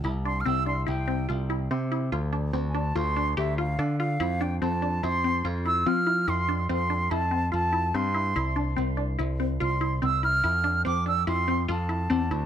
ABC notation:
X:1
M:5/4
L:1/16
Q:1/4=144
K:F
V:1 name="Flute"
z2 c'3/2 f'/2 e'2 c'2 g4 z8 | z4 z3/2 _a/2 =a2 c'4 e2 f4 f2- | f2 g2 a4 c'4 z2 e'2 f'4 | c'4 c'4 a4 a4 c'4- |
c'2 z8 z2 c'4 e'2 f'2- | f'4 d'2 e'2 c'4 a8 |]
V:2 name="Synth arpeggio sound"
E2 D2 C2 D2 E2 C2 F2 E2 C2 E2 | F2 D2 C2 D2 F2 D2 G2 F2 D2 F2 | E2 D2 C2 D2 E2 C2 F2 E2 C2 E2 | E2 D2 C2 D2 E2 C2 F2 E2 C2 E2 |
E2 D2 C2 D2 E2 C2 F2 E2 C2 E2 | E2 D2 C2 D2 E2 C2 F2 E2 C2 E2 |]
V:3 name="Picked electric bass" clef=bass
C,,4 C,,4 C,,4 C,,4 C,4 | D,,4 D,,4 D,,4 D,,4 D,4 | F,,4 F,,4 F,,4 F,,4 F,4 | F,,4 F,,4 F,,4 F,,4 G,,4 |
C,,4 C,,4 C,,4 C,,4 C,,4 | F,,4 F,,4 F,,4 F,,4 E,,2 D,,2 |]